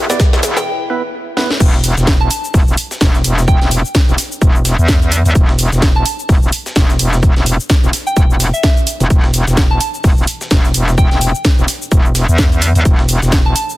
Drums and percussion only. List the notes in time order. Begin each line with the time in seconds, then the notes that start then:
0.10 snare, cabasa
0.20 kick, snare, closed hi-hat, cabasa
0.33 snare
0.43 snare, closed hi-hat, open hi-hat, cabasa
0.57 snare, cabasa
1.37 snare
1.50 snare
1.60 kick, closed hi-hat, crash, cabasa
1.74 snare
1.84 closed hi-hat, open hi-hat, cabasa
1.97 snare, cabasa
2.07 kick, snare, closed hi-hat, cabasa
2.31 closed hi-hat, open hi-hat, cabasa
2.44 cabasa
2.54 kick, open hi-hat, cabasa
2.68 cabasa
2.77 closed hi-hat, open hi-hat, cabasa
2.91 snare, cabasa
3.01 kick, snare, closed hi-hat, cabasa
3.15 snare, cabasa
3.24 closed hi-hat, open hi-hat, cabasa
3.38 snare, cabasa
3.48 kick, closed hi-hat, cabasa
3.61 snare, closed hi-hat
3.71 closed hi-hat, open hi-hat, cabasa
3.85 cabasa
3.95 kick, snare, closed hi-hat, cabasa
4.08 cabasa
4.18 snare, closed hi-hat, open hi-hat, cabasa
4.32 cabasa
4.42 kick, closed hi-hat, cabasa
4.55 cabasa
4.65 snare, closed hi-hat, open hi-hat, cabasa
4.79 cabasa
4.88 kick, snare, closed hi-hat, cabasa
5.02 closed hi-hat, cabasa
5.12 closed hi-hat, open hi-hat, cabasa
5.25 closed hi-hat, cabasa
5.35 kick, closed hi-hat, cabasa
5.49 snare
5.59 closed hi-hat, open hi-hat, cabasa
5.72 snare, cabasa
5.82 kick, snare, closed hi-hat, cabasa
6.06 closed hi-hat, open hi-hat, cabasa
6.19 cabasa
6.29 kick, open hi-hat, cabasa
6.43 cabasa
6.52 closed hi-hat, open hi-hat, cabasa
6.66 snare, cabasa
6.76 kick, snare, closed hi-hat, cabasa
6.90 snare, cabasa
6.99 closed hi-hat, open hi-hat, cabasa
7.13 snare, cabasa
7.23 kick, closed hi-hat, cabasa
7.36 snare, closed hi-hat
7.46 closed hi-hat, open hi-hat, cabasa
7.60 cabasa
7.70 kick, snare, closed hi-hat, cabasa
7.83 cabasa
7.93 snare, closed hi-hat, open hi-hat, cabasa
8.07 cabasa
8.17 kick, closed hi-hat, cabasa
8.30 cabasa
8.40 snare, closed hi-hat, open hi-hat, cabasa
8.54 cabasa
8.63 kick, snare, closed hi-hat, cabasa
8.77 closed hi-hat, cabasa
8.87 closed hi-hat, open hi-hat, cabasa
9.00 closed hi-hat, cabasa
9.10 kick, closed hi-hat, cabasa
9.24 snare
9.34 closed hi-hat, open hi-hat, cabasa
9.47 snare, cabasa
9.57 kick, snare, closed hi-hat, cabasa
9.81 closed hi-hat, open hi-hat, cabasa
9.94 cabasa
10.04 kick, open hi-hat, cabasa
10.18 cabasa
10.27 closed hi-hat, open hi-hat, cabasa
10.41 snare, cabasa
10.51 kick, snare, closed hi-hat, cabasa
10.65 snare, cabasa
10.74 closed hi-hat, open hi-hat, cabasa
10.88 snare, cabasa
10.98 kick, closed hi-hat, cabasa
11.11 snare, closed hi-hat
11.21 closed hi-hat, open hi-hat, cabasa
11.35 cabasa
11.45 kick, snare, closed hi-hat, cabasa
11.58 cabasa
11.68 snare, closed hi-hat, open hi-hat, cabasa
11.82 cabasa
11.92 kick, closed hi-hat, cabasa
12.05 cabasa
12.15 snare, closed hi-hat, open hi-hat, cabasa
12.29 cabasa
12.38 kick, snare, closed hi-hat, cabasa
12.52 closed hi-hat, cabasa
12.62 closed hi-hat, open hi-hat, cabasa
12.75 closed hi-hat, cabasa
12.85 kick, closed hi-hat, cabasa
12.99 snare
13.09 closed hi-hat, open hi-hat, cabasa
13.22 snare, cabasa
13.32 kick, snare, closed hi-hat, cabasa
13.56 closed hi-hat, open hi-hat, cabasa
13.69 cabasa